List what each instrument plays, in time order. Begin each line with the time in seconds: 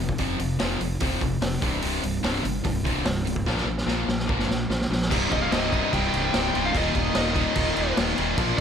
Already playing: fingered electric bass F1
0.00 overdriven electric guitar F2 C3
0.09 kick
0.18 fingered electric bass F1, overdriven electric guitar F2 C3 F3, kick, open hi-hat
0.39 fingered electric bass F1, overdriven electric guitar F2 C3, open hi-hat
0.59 fingered electric bass F1, overdriven electric guitar F2 C3 F3, snare, open hi-hat
0.80 fingered electric bass F1, overdriven electric guitar F2 C3, open hi-hat
1.00 fingered electric bass D#1, overdriven electric guitar F2 C3 F3, kick, open hi-hat
1.21 fingered electric bass F1, overdriven electric guitar F2 C3, kick, open hi-hat
1.41 fingered electric bass F1, overdriven electric guitar F2 C3, snare, open hi-hat
1.61 fingered electric bass C1, overdriven electric guitar C2 G2 C3, kick, open hi-hat
1.82 fingered electric bass C1, overdriven electric guitar C2 G2 C3, open hi-hat
2.02 fingered electric bass C1, overdriven electric guitar C2 G2, open hi-hat
2.23 fingered electric bass C1, overdriven electric guitar C2 G2 C3, snare, open hi-hat
2.44 fingered electric bass G1, overdriven electric guitar C2 G2, open hi-hat
2.64 fingered electric bass C1, overdriven electric guitar C2 G2, kick, open hi-hat
2.85 overdriven electric guitar C2 G2 C3, kick, open hi-hat
3.05 fingered electric bass C1, overdriven electric guitar C2 G2, snare, open hi-hat
3.26 overdriven electric guitar C2 G2, open hi-hat
3.36 kick
3.46 fingered electric bass A#1, overdriven electric guitar A#2 F3 A#3, kick, snare
3.58 snare
3.65 fingered electric bass A#1, overdriven electric guitar A#2 F3
3.78 snare
3.87 fingered electric bass A#1, overdriven electric guitar A#2 F3 A#3, snare
4.08 fingered electric bass A#1, overdriven electric guitar A#2 F3, snare
4.19 snare
4.27 fingered electric bass G1, overdriven electric guitar A#2 F3 A#3, kick
4.39 snare
4.48 fingered electric bass A#1, overdriven electric guitar A#2 F3, snare
4.69 fingered electric bass A#1, overdriven electric guitar A#2 F3, snare
4.81 snare
4.90 fingered electric bass A#1, overdriven electric guitar A#2 F3, snare
5.02 snare
5.10 fingered electric bass C1, overdriven electric guitar C2 G2 C3 G3 D#4, kick, crash
5.32 fingered electric bass C1, lead electric guitar D#5, kick, crash
5.42 lead electric guitar F5
5.51 fingered electric bass C1, overdriven electric guitar C2 G2 C3, lead electric guitar D#5, snare, crash
5.72 overdriven electric guitar C2 G2 C3 G3 D#4, kick, crash
5.92 fingered electric bass C1, overdriven electric guitar C2 G2 C3, lead electric guitar G5, kick, crash
6.14 fingered electric bass C1, crash
6.25 lead electric guitar G5
6.34 fingered electric bass C1, overdriven electric guitar C2 G2 C3, snare, crash
6.54 fingered electric bass C1, overdriven electric guitar C2 G2 C3, crash
6.65 lead electric guitar F5
6.74 fingered electric bass D#1, overdriven electric guitar D#2 A#2 D#3 G3 A#3 D#4, lead electric guitar D#5, kick, crash
6.95 fingered electric bass D#1, kick, crash
7.15 fingered electric bass D#1, overdriven electric guitar D#2 A#2 D#3, lead electric guitar D#5, snare, crash
7.35 overdriven electric guitar D#2 A#2 D#3 G3 A#3 D#4, kick, crash
7.56 fingered electric bass D#1, overdriven electric guitar D#2 A#2 D#3, kick, crash
7.77 fingered electric bass D#1, crash
7.97 fingered electric bass D#1, overdriven electric guitar D#2 A#2 D#3, snare, crash
8.18 fingered electric bass D#1, overdriven electric guitar D#2 A#2 D#3, crash
8.38 fingered electric bass A#1, overdriven electric guitar A#2 F3 A#3 D4 F4 A#4, kick, crash